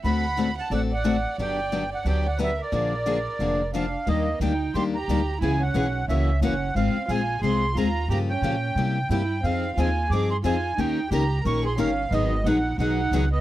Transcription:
0.04 D2 D3 A3 C4 F#4 A4 F#5 B5
0.37 D3 A3 C4 F#4 A4
0.58 F#5 A5
0.70 A1 D3 A3 C4 F#4 A4 D5 F#5
0.92 D5 F#5
1.04 D3 A3 C4 F#4 A4
1.38 G1 D3 F#3 B3 D4 G4 D5 G5
1.72 D3 F#3 B3 D4 G4
1.92 D5 F#5
2.05 D2 D3 F#3 B3 D4 G4 D5 G5
2.26 D5 F#5
2.39 D3 F#3 B3 D4 G4 B4
2.43 E5
2.60 A#4 D5
2.72 A#1 D3 F3 A#3 D4 G#4
3.06 D3 F3 A#3 D4 G#4
3.39 F1 D3 F3 A#3 D4 G#4
3.74 D3 F3 A#3 D4 G#4 F5
4.07 D#2 D#3 G3 A#3 D4 G4 D#5
4.40 D2 D#3 G3 A#3 D4 D#4 G4 G5
4.74 D#2 D#3 G3 A#3 D4 G4 C6
4.95 G4 A#5
5.08 D2 D#3 G3 A#3 D4 G4
5.41 C#2 C#3 E3 B3 C#4 E4 G#4 G#5
5.61 C#4 F#5
5.74 B1 C#3 E3 B3 C#4 G#4
6.08 C#2 C#3 E3 A#3 C#4 F#4 E5
6.41 F#1 C#3 E3 A#3 C#4 F#4 F#5
6.75 G#1 G#3 C4 F4 G#4 F5
6.95 muted upright bass stroke
7.08 A#1 G#3 C4 F4 G#4 G#5
7.42 C2 G#3 C4 F4 G#4 C6
7.75 D#2 G#3 C4 F4 G#4 A#5
8.08 G2 C#3 F3 A#3 F4 G4 A#5
8.29 C#4 G5
8.42 A#2 C#3 F3 A#3 F4 G4
8.76 C3 G3 A#3 E4 G4
9.09 G2 C3 G3 A#3 E4 G4 G5
9.43 F2 F3 C4 D#4 G#4 F5
9.77 D#2 F3 C4 D#4 F4 G#4 G#5
10.10 G2 F3 C4 D#4 G#4 D6
10.31 G#4 C6
10.44 F2 F3 C4 D#4 F4 G#4 G#5
10.78 D#2 D#3 A#3 C#4 D#4 G4 A#4 G5
11.11 C#2 D#3 A#3 C#4 G4 A#4 A#5
11.44 A#1 D#3 A#3 C#4 G4 A#4 C#6
11.65 G#4 C6
11.78 G1 D#3 A#3 C#4 G4 A#4 F5
12.11 G#1 D#3 F#3 B3 D#4 G#4 D#5
12.44 A#1 D#3 F#3 B3 D#4 G#4 F#5
12.78 B1 D#3 F#3 B3 D#4 G#4 F#5
13.11 C#2 D#3 F#3 B3 D#4 G#4
13.32 B3 D#5

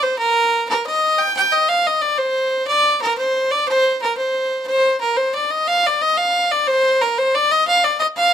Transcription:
0.03 C5
0.19 A#4
0.69 A#4
0.87 D#5
1.19 G5
1.37 G5
1.52 D#5
1.69 F5
1.87 D#5
2.02 D5
2.18 C5
2.67 D5
3.02 A#4
3.18 C5
3.51 D5
3.68 C5
4.02 A#4
4.17 C5
4.67 C5
5.01 A#4
5.17 C5
5.35 D5
5.51 D#5
5.68 F5
5.87 D5
6.02 D#5
6.18 F5
6.51 D5
6.67 C5
7.01 A#4
7.18 C5
7.35 D5
7.52 D#5
7.67 F5
7.84 D5
8.00 D#5
8.17 F5

